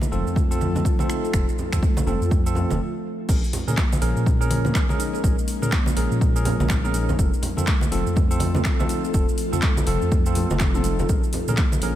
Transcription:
Already playing: F3 C4 F4 A4
0.01 high conga, shaker
0.11 F1 F3 C4 F4 A4, shaker
0.26 F2, shaker
0.36 A3, kick, high conga, shaker
0.51 C4 F4 A4, shaker
0.61 F3, high conga, shaker
0.75 A3, mid tom, high conga, shaker
0.85 kick, shaker
0.99 A3 C4 F4 A4, high conga, shaker
1.10 D#4, finger snap, shaker
1.24 A4, shaker
1.34 F1 C4 F4 A4, finger snap, kick, shaker
1.49 shaker
1.58 low conga, shaker
1.73 F2 C4 F4 A4, finger snap, kick, high conga, shaker
1.83 A3, kick, shaker
1.97 high conga, low conga, shaker
2.07 F1 F3 C4 F4 A4, mid tom, shaker
2.21 F2, shaker
2.31 A3, kick, shaker
2.46 C4 F4 A4, shaker
2.55 F3, low conga, shaker
2.70 F1 A3, high conga, shaker
3.29 A#1 G#3 A#3 C#4 G#4 A#4, kick, crash, shaker
3.44 shaker
3.53 open hi-hat, low conga, shaker
3.67 A#2 C#4 G#4 A#4, high conga, shaker
3.77 A#3, finger snap, kick, clap, shaker
3.93 high conga, shaker
4.02 A#1 F3 C#4 G#4 A#4, open hi-hat, shaker
4.16 A#2, shaker
4.26 kick, high conga, shaker
4.41 C#4 G#4 A#4, shaker
4.50 F3, open hi-hat, high conga, shaker
4.65 A#3, mid tom, high conga, shaker
4.75 finger snap, kick, clap, shaker
4.89 G#3 C#4 G#4 A#4, high conga, shaker
4.99 D#4, open hi-hat, shaker
5.13 A#4, shaker
5.23 A#1 C#4 G#4 A#4, kick, shaker
5.39 shaker
5.48 open hi-hat, shaker
5.62 A#2 C#4 G#4 A#4, high conga, shaker
5.72 A#3, finger snap, kick, clap, shaker
5.86 high conga, shaker
5.97 A#1 F3 C#4 G#4 A#4, open hi-hat, shaker
6.11 A#2, shaker
6.21 G#3, kick, shaker
6.36 C#4 G#4 A#4, shaker
6.45 F3, open hi-hat, low conga, shaker
6.60 A#1 A#3, high conga, shaker
6.68 finger snap, kick, clap, high conga, shaker
6.84 G#3 C#4 G#4 A#4, mid tom, shaker
6.94 D#4, open hi-hat, shaker
7.09 A#4, high conga, low conga, shaker
7.18 F1 F3 C4 F4 A4, kick, shaker
7.34 shaker
7.42 open hi-hat, low conga, shaker
7.57 F2 C4 F4 A4, high conga, shaker
7.67 A3, finger snap, kick, clap, shaker
7.81 high conga, shaker
7.92 F1 F3 C4 F4 A4, open hi-hat, shaker
8.06 F2, shaker
8.16 A3, kick, high conga, shaker
8.31 C4 F4 A4, shaker
8.40 F3, open hi-hat, high conga, shaker
8.55 A3, mid tom, high conga, shaker
8.65 finger snap, kick, clap, shaker
8.79 A3 C4 F4 A4, high conga, shaker
8.89 D#4, open hi-hat, shaker
9.04 A4, shaker
9.14 F1 C4 F4 A4, kick, shaker
9.29 shaker
9.38 open hi-hat, shaker
9.53 F2 C4 F4 A4, high conga, shaker
9.62 A3, finger snap, kick, clap, shaker
9.77 high conga, low conga, shaker
9.87 F1 F3 C4 F4 A4, open hi-hat, shaker
10.02 F2, shaker
10.11 A3, kick, shaker
10.26 C4 F4 A4, shaker
10.35 F3, open hi-hat, low conga, shaker
10.50 F1 A3, high conga, shaker
10.60 finger snap, kick, clap, high conga, shaker
10.74 A3 C4 F4 A4, mid tom, shaker
10.84 D#4, open hi-hat, shaker
10.99 A4, high conga, low conga, shaker
11.09 A#1 G#3 A#3 C#4 G#4 A#4, kick, shaker
11.23 shaker
11.33 open hi-hat, low conga, shaker
11.48 A#2 C#4 G#4 A#4, high conga, shaker
11.57 A#3, finger snap, kick, clap, shaker
11.72 high conga, shaker
11.82 A#1 F3 C#4 G#4 A#4, open hi-hat, shaker

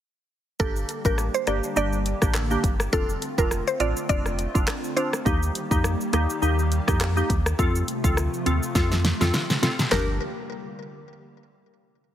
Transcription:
0.60 G1 D3 G3 A#3 D4 G4 A4, kick, shaker
0.76 shaker
0.89 closed hi-hat, shaker
1.05 A1 A#3 D4 G4 A#4, kick, shaker
1.18 cross-stick, shaker
1.34 C5, shaker
1.47 G1 A#3 D4 G4 D5, cross-stick, closed hi-hat, shaker
1.63 shaker
1.76 G1 A#3 D4 G4 D5, shaker
1.93 shaker
2.06 closed hi-hat, shaker
2.22 A1 A#3 D4 G4, kick, cross-stick, shaker
2.34 cross-stick, clap, shaker
2.51 A#3 D4 G4, shaker
2.64 G1, kick, closed hi-hat, shaker
2.80 cross-stick, shaker
2.93 F1 A3 C4 D4 F4 A4, kick, shaker
3.09 shaker
3.22 closed hi-hat, shaker
3.38 F1 C4 D4 F4 A#4, kick, shaker
3.51 cross-stick, shaker
3.67 C5, shaker
3.80 A1 C4 D4 F4 D5, closed hi-hat, shaker
3.97 shaker
4.09 F1 C4 D4 F4 D5, kick, shaker
4.26 cross-stick, shaker
4.39 closed hi-hat, shaker
4.54 F1 C4 D4 F4, kick, shaker
4.68 cross-stick, clap, shaker
4.84 shaker
4.96 C4 D4 F4 C5, closed hi-hat, shaker
5.13 cross-stick, shaker
5.25 D#2 D#3 G3 A#3 D#4 G4, kick, shaker
5.43 shaker
5.55 closed hi-hat, shaker
5.71 F2 A#3 D#4 G4, kick, shaker
5.84 cross-stick, shaker
6.01 shaker
6.13 D#2 A#3 D#4 G4, cross-stick, closed hi-hat, shaker
6.30 shaker
6.42 D#2 A#3 D#4 G4, shaker
6.59 shaker
6.72 closed hi-hat, shaker
6.87 F2 A#3 D#4 G4, kick, cross-stick, shaker
7.01 cross-stick, clap, shaker
7.17 A#3 D#4 G4, shaker
7.30 D#2, kick, closed hi-hat, shaker
7.46 cross-stick, shaker
7.59 F2 C3 F3 A3 C4 F4 A4, kick, shaker
7.75 shaker
7.88 closed hi-hat, shaker
8.04 D2 C4 F4 A4, kick, shaker
8.17 cross-stick, shaker
8.34 shaker
8.46 D#2 C4 F4 A4, closed hi-hat, shaker
8.63 shaker
8.75 F2 C4 F4 A4, kick, snare, shaker
8.92 snare, shaker
9.05 snare, closed hi-hat, shaker
9.21 F2 C4 F4 A4, snare, shaker
9.34 snare, shaker
9.50 snare, shaker
9.62 C4 F4 A4, snare, closed hi-hat, shaker
9.79 snare, shaker
9.91 G1 D3 G3 A#3 D4 G4 A#4, snare, clap, floor tom

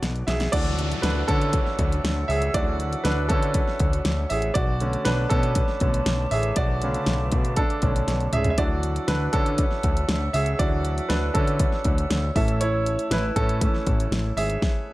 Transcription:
Already playing: F#3 B3 C#4 D4 F#4 A4 B4 D5
0.03 B1, snare, closed hi-hat
0.16 closed hi-hat
0.27 B1 G#4 E5, snare, closed hi-hat
0.40 snare, closed hi-hat
0.52 D2 E3 F#3 D4 F#4 D5 E5 F#5 E6, kick, closed hi-hat, crash, downlifter
0.79 closed hi-hat
0.92 closed hi-hat
1.02 D2 D4 B4, snare, closed hi-hat
1.28 D3 C#4 A4, kick, closed hi-hat
1.42 closed hi-hat
1.53 kick, closed hi-hat
1.66 snare
1.79 D2, kick, closed hi-hat
1.92 closed hi-hat
2.04 D2, snare, closed hi-hat
2.28 C#2 G#4 E5, open hi-hat
2.42 closed hi-hat
2.54 D2 E3 F#3 D4 F#4 D5, kick, closed hi-hat
2.80 closed hi-hat
2.93 closed hi-hat
3.04 D2 D4 B4, snare, closed hi-hat
3.29 D3 C#4 A4, kick, closed hi-hat
3.43 closed hi-hat
3.54 kick, closed hi-hat
3.68 snare
3.80 D2, kick, closed hi-hat
3.93 closed hi-hat
4.05 D2, snare, closed hi-hat
4.30 A1 G#4 E5, open hi-hat
4.42 closed hi-hat
4.54 B1 F#4 B4 D5 A5 D6, kick, closed hi-hat
4.80 D3 A3 C#4, closed hi-hat
4.93 closed hi-hat
5.05 B1 D4 B4, snare, closed hi-hat
5.29 B2 C#4 A4, kick, closed hi-hat
5.43 closed hi-hat
5.55 kick, closed hi-hat
5.68 snare
5.80 B1 D3 A3 C#4, kick, closed hi-hat
5.94 closed hi-hat
6.06 B1, snare, closed hi-hat
6.31 A1 G#4 E5, open hi-hat
6.43 closed hi-hat
6.56 B1 F#4 D5, kick, closed hi-hat
6.82 C#3 D3 A3, closed hi-hat
6.94 closed hi-hat
7.06 B1, snare, closed hi-hat
7.32 B2, kick, closed hi-hat
7.45 closed hi-hat
7.56 D4 A4, kick, closed hi-hat
7.70 closed hi-hat
7.82 B1 D3 A3 C#4, kick, closed hi-hat
7.96 closed hi-hat
8.08 B1, snare, closed hi-hat
8.20 closed hi-hat
8.33 C#2 G#4 E5, closed hi-hat, mid tom
8.44 closed hi-hat, floor tom
8.50 E5
8.58 D2 E3 F#3 D4 F#4 D5 E5 F#5 E6, kick, closed hi-hat
8.83 closed hi-hat
8.96 closed hi-hat
9.08 D2 D4 B4, snare, closed hi-hat
9.33 D3 C#4 A4, kick, closed hi-hat
9.46 closed hi-hat
9.58 kick, closed hi-hat
9.71 snare
9.83 D2, kick, closed hi-hat
9.97 closed hi-hat
10.09 D2, snare, closed hi-hat
10.33 C#2 G#4 E5, open hi-hat
10.46 closed hi-hat
10.59 D2 E3 F#3 D4 F#4 D5, kick, closed hi-hat
10.85 closed hi-hat
10.98 closed hi-hat
11.09 D2 D4 B4, snare, closed hi-hat
11.34 D3 C#4 A4, kick, closed hi-hat
11.47 closed hi-hat
11.60 kick, closed hi-hat
11.72 snare
11.84 D2, kick, closed hi-hat
11.98 closed hi-hat
12.10 D2, snare, closed hi-hat
12.36 A1 E3 A3 C#4 A4 C#5 E5 A5, kick, open hi-hat
12.48 closed hi-hat
12.61 E4 C#5, closed hi-hat
12.86 closed hi-hat
12.99 closed hi-hat
13.11 A1 E4 B4, snare, closed hi-hat
13.36 A2 C#4 A4, kick, closed hi-hat
13.49 closed hi-hat
13.61 E3 A3 C#4, kick, closed hi-hat
13.74 snare
13.87 A1, kick, closed hi-hat
14.00 closed hi-hat
14.11 A1, snare, closed hi-hat
14.37 G#1 G#4 E5, open hi-hat
14.50 closed hi-hat
14.62 kick, snare

